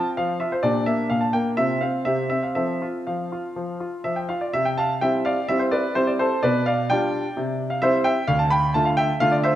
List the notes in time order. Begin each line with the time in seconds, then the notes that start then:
Already playing: C4 F4
0.17 F3 F5
0.40 F4 E5
0.52 C5
0.63 A#2 D4 G4 D5
0.86 A#3 E5
1.10 A#2 F5
1.21 A5
1.33 A#3 G5
1.57 C3 C4 F4 E5
1.81 C4 F5
2.05 C3 C4 G4 E5
2.30 C4 E5
2.43 F5
2.55 F3 C4 A4 E5
2.82 F4
3.07 F3 F5
3.32 F4
3.56 F3
3.80 F4
4.04 F3 E5
4.16 G5
4.29 F4 F5
4.41 D5
4.53 C3 E5
4.65 G5
4.77 F5 A5
5.01 G3 C4 E4 E5 G5
5.25 D5 F5
5.48 G3 C4 E4 E5
5.59 C5
5.71 B4 D5
5.95 G3 C4 E4 C5
6.07 D5
6.19 A4 C5
6.43 B2 B4 D5
6.66 D5 F5
6.90 G3 D4 F4 D5 G5
7.37 C3
7.70 F5
7.82 G3 C4 E4 C5 E5
8.04 E5 G5
8.27 D2 F5
8.39 A5
8.50 G5 B5
8.74 D3 A3 F4 A5
8.85 F5
8.97 E5 G5
9.20 D3 A3 F4 F5
9.32 D5
9.44 C5 E5